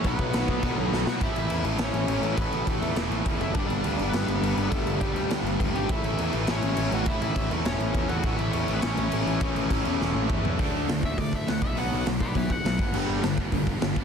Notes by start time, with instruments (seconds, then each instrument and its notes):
0.02 picked electric bass B1, distorted electric guitar B2 F#3 B3 D4, overdriven electric guitar B2 F#3, kick, crash
0.06 overdriven electric guitar B3, lead electric guitar B3 B4, distorted electric guitar F#4
0.19 picked electric bass B1, kick
0.33 picked electric bass B1, overdriven electric guitar B2 F#3 B3, snare, crash
0.48 picked electric bass B1, kick
0.63 picked electric bass B1, overdriven electric guitar B2 F#3 B3, kick, crash
0.74 picked electric bass B1, lead electric guitar A4
0.91 picked electric bass B1, overdriven electric guitar B2 F#3 B3, snare
1.06 picked electric bass B2, lead electric guitar F#4 F#5, snare
1.18 picked electric bass A1, distorted electric guitar A2 E3 A3 C#4 E4, overdriven electric guitar A2 E3, kick, crash
1.22 overdriven electric guitar A3, lead electric guitar E4 E5
1.36 picked electric bass A1, lead electric guitar E4 E5, crash
1.47 picked electric bass E2, distorted electric guitar A2 E3 A3 C#4 E4, crash
1.64 picked electric bass A1, distorted electric guitar A2 E3 A3, crash
1.78 picked electric bass A1, distorted electric guitar A2 E3 A3 C#4 E4, lead electric guitar C#4 C#5, snare, crash
1.93 picked electric bass A1, crash
2.06 picked electric bass A1, distorted electric guitar A2 E3 A3 C#4 E4, crash
2.21 picked electric bass A1, overdriven electric guitar A2 E3 A3, crash
2.35 picked electric bass A1, distorted electric guitar A2 E3 A3 C#4 E4, overdriven electric guitar A2, lead electric guitar B3 B4, kick, crash
2.39 overdriven electric guitar E3 A3
2.50 picked electric bass A1, crash
2.66 picked electric bass A1, distorted electric guitar A2 E3 A3 C#4 E4, lead electric guitar A3 A4, kick, crash
2.80 picked electric bass E2, distorted electric guitar A2 E3 A3, crash
2.94 picked electric bass E1, distorted electric guitar A2 E3 A3 C#4 E4, snare, crash
3.09 picked electric bass A1, crash
3.24 picked electric bass E2, distorted electric guitar A2 E3 A3 C#4 E4, kick, crash
3.39 picked electric bass F#1, overdriven electric guitar A2 E3 A3, lead electric guitar E4 E5, crash
3.54 picked electric bass G1, distorted electric guitar G2 D3 G3 B3 D4, overdriven electric guitar G2 D3 G3, lead electric guitar D4 D5, kick, crash
3.67 picked electric bass G1, lead electric guitar D4 D5, crash
3.83 picked electric bass D2, distorted electric guitar G2 D3 G3 B3 D4, crash
3.98 picked electric bass G1, distorted electric guitar G2 D3 G3, crash
4.10 picked electric bass G1, distorted electric guitar G2 D3, lead electric guitar B4, crash
4.14 distorted electric guitar G3 B3 D4, lead electric guitar B3, snare
4.27 picked electric bass G1, crash
4.41 picked electric bass G1, distorted electric guitar G2 D3 G3 B3 D4, crash
4.55 picked electric bass G1, overdriven electric guitar G2 D3 G3, crash
4.69 picked electric bass G1, overdriven electric guitar G2 D3 G3, distorted electric guitar G2 D3 G3 B3 D4, lead electric guitar A3 A4, kick, crash
4.86 picked electric bass G1, crash
5.00 picked electric bass G1, distorted electric guitar G2 D3 G3 B3 D4, lead electric guitar G3 G4, kick, crash
5.13 picked electric bass D2, distorted electric guitar D3 G3, crash
5.17 distorted electric guitar G2
5.29 picked electric bass D2, distorted electric guitar G2 D3 G3 B3 D4, snare, crash
5.42 picked electric bass G1
5.46 crash
5.58 picked electric bass D2, distorted electric guitar G2 D3 G3 B3 D4, kick, crash
5.73 picked electric bass G#1, overdriven electric guitar D3 G3, lead electric guitar G4, crash
5.77 overdriven electric guitar G2, lead electric guitar G5
5.87 picked electric bass A1, distorted electric guitar A2 E3 A3 C#4 E4, overdriven electric guitar A2 E3, lead electric guitar E4, kick, crash
5.91 overdriven electric guitar A3, lead electric guitar E5
6.03 picked electric bass A1, lead electric guitar E4 E5, crash
6.17 picked electric bass E2, distorted electric guitar A2 E3 A3 C#4 E4, crash
6.32 picked electric bass A1, distorted electric guitar A2 E3 A3, crash
6.46 picked electric bass A1, distorted electric guitar A2 E3 A3 C#4 E4, snare, crash
6.50 lead electric guitar C#4 C#5
6.62 picked electric bass A1, crash
6.75 picked electric bass A1, distorted electric guitar A2 E3 A3 C#4 E4, crash
6.92 picked electric bass A1, overdriven electric guitar A2 E3 A3, lead electric guitar F#4 F#5, crash
7.05 picked electric bass A1, distorted electric guitar A2 E3 A3 C#4 E4, overdriven electric guitar A2 E3, lead electric guitar E4 E5, kick, crash
7.09 overdriven electric guitar A3
7.21 picked electric bass A1, lead electric guitar E4 E5, crash
7.34 picked electric bass A1, distorted electric guitar A2 E3 A3 C#4 E4, kick, crash
7.50 picked electric bass E2, distorted electric guitar A2 E3 A3, crash
7.64 picked electric bass E1, distorted electric guitar A2 E3 A3 C#4 E4, lead electric guitar C#4 C#5, snare, crash
7.79 picked electric bass A1, crash
7.93 picked electric bass E2, distorted electric guitar A2 E3 A3 C#4 E4, kick, crash
8.09 picked electric bass E2, overdriven electric guitar A2 E3 A3, lead electric guitar F#4 F#5, crash
8.22 picked electric bass A1, distorted electric guitar A2 E3 A3 C#4 E4, overdriven electric guitar A2 E3 A3, kick, crash
8.37 picked electric bass A1, lead electric guitar E4 E5, crash
8.50 picked electric bass E2, distorted electric guitar A2 E3 A3 C#4 E4, lead electric guitar C#4 C#5, crash
8.67 picked electric bass A1, distorted electric guitar A2 E3 A3, crash
8.74 lead electric guitar B3 B4
8.81 picked electric bass A1, distorted electric guitar A2 E3 A3 C#4 E4, lead electric guitar C#4 C#5, snare, crash
8.97 picked electric bass A1, crash
9.09 picked electric bass A1, distorted electric guitar A2 E3 A3 C#4 E4, crash
9.26 picked electric bass A1, overdriven electric guitar A2 E3 A3, crash
9.39 picked electric bass A1, distorted electric guitar A2 E3 A3 C#4 E4, overdriven electric guitar A2, kick, crash
9.43 overdriven electric guitar E3 A3
9.55 picked electric bass A1, crash
9.69 picked electric bass A1, distorted electric guitar A2 E3 A3 C#4 E4, kick, crash
9.85 picked electric bass E2, distorted electric guitar A2 E3 A3, crash
9.98 picked electric bass E1, distorted electric guitar A2 E3 A3 C#4 E4, snare
10.15 picked electric bass A1
10.28 picked electric bass E2, distorted electric guitar A2 E3 A3 C#4 E4, kick, mid tom
10.44 picked electric bass E2, overdriven electric guitar A2 E3 A3, floor tom
10.57 picked electric bass D2, distorted electric guitar D3 F#3 A3 D4, overdriven electric guitar D3 A3 D4, kick, open hi-hat
10.74 picked electric bass D2
10.87 picked electric bass D2, overdriven electric guitar D3 A3, snare, open hi-hat
11.03 picked electric bass D2, lead electric guitar E5, kick
11.18 picked electric bass D2, overdriven electric guitar D3 A3, lead electric guitar D5, kick, open hi-hat
11.33 lead electric guitar E5, kick
11.47 picked electric bass D2, overdriven electric guitar D3 A3, lead electric guitar F#5, snare, open hi-hat
11.59 picked electric bass B1, distorted electric guitar B2 F#3 B3 D4, kick
11.63 lead electric guitar E5
11.75 picked electric bass B1, overdriven electric guitar B2 F#3 B3, lead electric guitar F#5, open hi-hat
11.93 picked electric bass B1, lead electric guitar F#5
12.05 picked electric bass B1, overdriven electric guitar B2 F#3, snare, open hi-hat
12.20 picked electric bass B1, lead electric guitar B4 D5, kick
12.35 picked electric bass B1, overdriven electric guitar B2 F#3, lead electric guitar B4 E5, kick, open hi-hat
12.50 lead electric guitar F#5, kick
12.65 picked electric bass B1, overdriven electric guitar B2 F#3, snare, open hi-hat
12.78 picked electric bass G1, distorted electric guitar G2 D3 G3 B3 D4, kick
12.92 picked electric bass G1, overdriven electric guitar G2 D3 G3, crash
13.08 picked electric bass G1
13.23 picked electric bass G1, overdriven electric guitar G2 D3, snare, open hi-hat
13.38 picked electric bass G1, kick
13.52 picked electric bass G1, overdriven electric guitar G2 D3, kick, open hi-hat
13.67 kick
13.81 picked electric bass G1, overdriven electric guitar G2 D3, snare, open hi-hat
13.94 picked electric bass G1, distorted electric guitar G2 D3 G3 B3, kick
13.98 distorted electric guitar D4